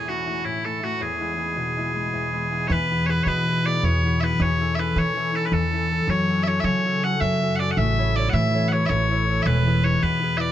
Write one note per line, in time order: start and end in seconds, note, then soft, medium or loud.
0.00 0.48 E2 medium
0.00 1.20 B3 soft
0.08 0.26 A3 soft
0.08 0.27 C#4 soft
0.08 0.27 E4 soft
0.08 0.45 F#4 medium
0.26 0.64 A3 soft
0.26 0.65 C#4 soft
0.26 0.65 E4 medium
0.44 1.05 A2 medium
0.44 0.65 E4 medium
0.65 0.82 A3 soft
0.65 0.82 C#4 soft
0.65 0.83 E4 medium
0.65 0.84 A4 medium
0.82 1.26 A3 soft
0.82 3.73 C#4 soft
0.82 1.20 E4 soft
0.82 1.02 F#4 medium
1.00 2.12 E2 medium
1.00 2.68 G#4 medium
1.20 1.36 G#3 soft
1.20 1.37 B3 soft
1.20 1.38 E4 soft
1.37 1.76 G#3 soft
1.37 1.77 B3 soft
1.37 1.78 E4 medium
1.56 2.75 B2 medium
1.77 1.93 G#3 soft
1.77 1.94 B3 soft
1.77 1.95 E4 medium
1.94 2.32 G#3 soft
1.94 2.33 B3 soft
1.94 2.33 E4 soft
2.13 2.75 E2 medium
2.33 2.50 G#3 soft
2.33 2.51 B3 soft
2.33 2.51 E4 soft
2.51 2.75 G#3 soft
2.51 2.90 B3 soft
2.51 2.91 E4 soft
2.68 3.19 E2 loud
2.68 3.31 E3 medium
2.68 2.72 C#5 medium
2.72 3.06 B4 medium
2.91 3.08 B3 soft
2.91 3.08 E4 soft
2.91 3.09 G#4 soft
3.06 3.47 B3 medium
3.06 3.47 E4 soft
3.06 3.48 G#4 medium
3.06 3.23 B4 medium
3.06 3.10 C#5 medium
3.23 4.44 B2 medium
3.23 3.76 E3 medium
3.23 3.28 C#5 loud
3.28 3.66 B4 loud
3.47 3.65 B3 soft
3.47 3.66 E4 soft
3.47 3.66 G#4 medium
3.65 4.04 B3 medium
3.65 4.05 E4 medium
3.65 4.06 G#4 medium
3.65 3.84 D5 medium
3.83 4.33 E2 medium
3.83 4.40 E3 medium
3.83 4.20 C#5 loud
4.05 4.22 B3 medium
4.05 4.23 E4 soft
4.05 4.23 G#4 medium
4.20 7.33 B3 soft
4.20 4.60 E4 soft
4.20 4.67 G#4 soft
4.20 4.42 B4 medium
4.20 4.24 E5 medium
4.40 4.89 E2 loud
4.40 4.95 E3 medium
4.40 4.75 C#5 loud
4.60 4.78 C#4 soft
4.60 4.78 E4 soft
4.60 4.78 A4 medium
4.75 5.16 C#4 soft
4.75 5.16 E4 soft
4.75 5.17 A4 medium
4.75 4.79 E5 medium
4.79 4.98 B4 medium
4.96 5.51 E3 medium
4.96 5.45 E3 medium
4.96 5.36 C#5 loud
5.16 5.33 C#4 medium
5.16 5.33 E4 medium
5.16 5.34 A4 medium
5.33 5.71 C#4 medium
5.33 5.73 E4 medium
5.33 5.76 A4 medium
5.33 5.45 A4 medium
5.45 5.53 B4 medium
5.52 6.01 E2 loud
5.52 6.13 E3 medium
5.52 6.10 A4 loud
5.71 5.91 C#4 medium
5.71 5.91 E4 soft
5.76 5.91 A4 medium
5.91 6.28 C#4 soft
5.91 7.98 E4 soft
5.91 6.30 A4 medium
6.08 6.57 F#2 loud
6.08 6.70 F#3 medium
6.08 6.43 C#5 loud
6.29 6.46 C#4 soft
6.29 6.47 F#4 soft
6.29 6.47 A4 medium
6.43 6.85 C#4 medium
6.43 6.86 F#4 medium
6.43 6.48 E5 medium
6.48 6.86 A4 medium
6.48 6.60 C#5 medium
6.60 7.14 F#3 medium
6.60 6.64 E5 loud
6.64 7.83 C#3 medium
6.64 7.04 C#5 loud
6.85 7.04 C#4 soft
6.85 7.04 F#4 soft
6.85 7.05 A4 medium
7.04 7.42 C#4 medium
7.04 7.43 F#4 soft
7.04 7.43 A4 medium
7.04 7.20 F#5 loud
7.20 7.70 F#2 medium
7.20 7.83 F#3 medium
7.20 7.56 E5 loud
7.42 7.60 C#4 medium
7.42 7.61 F#4 soft
7.42 7.61 A4 medium
7.56 7.71 D5 medium
7.56 7.59 F#5 medium
7.61 10.50 C#4 soft
7.61 10.05 F#4 soft
7.61 7.98 A4 medium
7.71 7.78 F#5 medium
7.77 8.27 A1 loud
7.77 8.90 A3 medium
7.77 8.16 E5 loud
7.98 8.16 E4 medium
7.98 8.16 A4 soft
7.98 8.17 C#5 medium
8.16 8.53 E4 soft
8.16 8.54 A4 soft
8.16 8.54 C#5 soft
8.16 8.30 D5 medium
8.30 8.83 A2 loud
8.30 8.34 F#5 medium
8.34 9.46 E3 medium
8.34 8.68 E5 medium
8.54 8.72 E4 medium
8.54 8.72 A4 soft
8.54 8.73 C#5 medium
8.68 8.72 F#5 medium
8.72 9.11 E4 medium
8.72 9.11 A4 medium
8.72 8.86 C#5 medium
8.72 9.12 C#5 medium
8.86 9.39 A1 loud
8.86 9.43 C#5 loud
8.86 8.89 E5 loud
8.90 9.73 A3 medium
9.11 9.28 E4 medium
9.11 9.29 A4 soft
9.11 9.29 C#5 medium
9.29 9.66 E4 soft
9.29 9.73 A4 soft
9.29 10.52 C#5 soft
9.43 9.95 E1 loud
9.43 9.84 B4 medium
9.43 9.46 E5 medium
9.47 10.08 E3 medium
9.67 9.84 E4 soft
9.67 9.85 G#4 soft
9.67 9.85 B4 medium
9.84 10.22 E4 medium
9.84 10.23 G#4 medium
9.84 10.23 B4 medium
9.84 10.03 C#5 loud
10.02 10.52 E2 loud
10.02 10.52 B2 medium
10.02 10.37 B4 loud
10.22 10.39 E4 soft
10.22 10.40 G#4 soft
10.22 10.40 B4 medium
10.37 10.52 E4 medium
10.37 10.52 G#4 soft
10.37 10.52 B4 medium
10.37 10.52 D5 loud
10.37 10.41 E5 loud